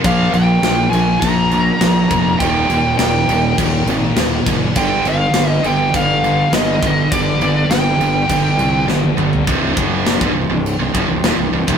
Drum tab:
CC |x-x-x-x-x-x-x-x-|x-x-x-x-x-x-x-x-|x-x-x-x-x-x-x-x-|x-x-x-x-x-x-----|
SD |----o-------o---|----o-------o---|----o-------o---|----o-------o---|
T1 |----------------|----------------|----------------|-------------o--|
T2 |----------------|----------------|----------------|--------------o-|
FT |----------------|----------------|----------------|---------------o|
BD |o-------o-----o-|o-------o-----o-|o-------o-----o-|o-------o-------|

CC |x---x---x---x---|
SD |----o-------o---|
T1 |----------------|
T2 |----------------|
FT |----------------|
BD |o-o--o----o----o|